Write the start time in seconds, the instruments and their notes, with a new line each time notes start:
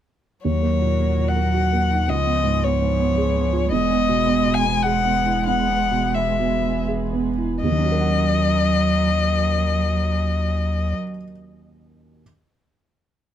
0.44 felt piano D#2, sub bass D#2, cello F#3, string section F#3 F#4 A#4, violin C#5
0.62 felt piano A#3
0.81 felt piano A#2
1.00 felt piano A#3
1.19 felt piano A#2
1.28 violin F#5
1.36 felt piano A#3
1.54 felt piano F#4
1.73 felt piano A#3
1.90 felt piano D#4
2.08 felt piano C#2, sub bass C#2, cello F3, string section F3 G#4 B4, violin D#5
2.26 felt piano B3
2.44 felt piano G#2
2.63 felt piano B3, violin C#5
2.81 felt piano G#2
2.99 felt piano B3
3.17 felt piano G#4
3.36 felt piano B3
3.53 felt piano F4
3.71 sub bass E1, felt piano E2, string section E3, cello G#3, violin D#5
3.90 felt piano B3
4.09 felt piano B2
4.27 felt piano B3
4.45 felt piano B2
4.54 violin G#5
4.65 felt piano B3
4.83 felt piano G#4, violin F#5
5.04 felt piano B3
5.25 felt piano E4
5.46 felt piano E2, violin F#5
5.69 felt piano B3
5.91 felt piano B2
6.14 felt piano B3, violin E5
6.39 felt piano B2
6.63 felt piano B3
6.88 felt piano G#4
7.13 felt piano B3
7.38 felt piano E4
7.62 sub bass D#2, felt piano D#2, cello F#3, string section F#3 C#4 A#4, violin D#5
7.71 felt piano D#3
7.78 felt piano C#4
7.85 felt piano F#4
7.92 felt piano A#4
7.99 felt piano F#5